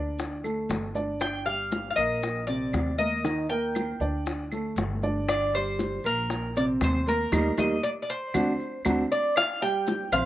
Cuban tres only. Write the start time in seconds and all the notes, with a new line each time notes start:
1.21 G5
1.46 F5
1.90 F5
1.96 D#5
2.47 D5
2.98 D#5
3.50 G5
5.29 D5
5.55 C5
6.06 A#4
6.57 D5
6.84 C5
7.09 A#4
7.59 D#5
7.83 D5
8.02 D5
8.10 C5
9.12 D5
9.37 F5
9.62 G5
10.13 F5